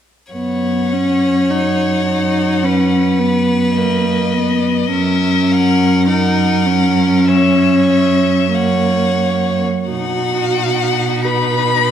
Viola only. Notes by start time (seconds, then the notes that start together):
0.33 B3
0.93 C#4
1.51 D#4
2.07 D#4
2.63 C#4
3.19 B3
3.77 A#3
4.34 B3
4.92 C#4
6.07 D#4
6.66 C#4
8.53 A#3
9.88 F#4
11.25 B4